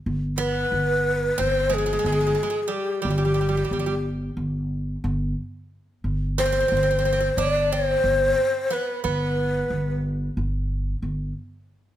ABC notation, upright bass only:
X:1
M:9/8
L:1/8
Q:3/8=60
K:none
V:1 name="Upright bass" clef=bass
G,,,2 G,,,2 G,,,2 G,,, z2 | G,,,2 G,,,2 G,,,2 G,,, z2 | G,,,2 G,,,2 G,,,2 G,,, z2 | G,,,2 G,,,2 G,,,2 G,,, z2 |]